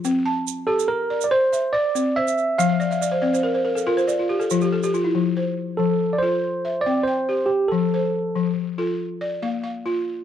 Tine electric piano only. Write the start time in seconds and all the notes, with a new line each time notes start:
0.67 A4
0.88 A#4
1.24 D5
1.31 C5
1.73 D5
2.16 E5
2.58 F5
5.77 A4
6.13 D5
6.18 C5
6.81 D5
7.03 C5
7.46 G4
7.68 A4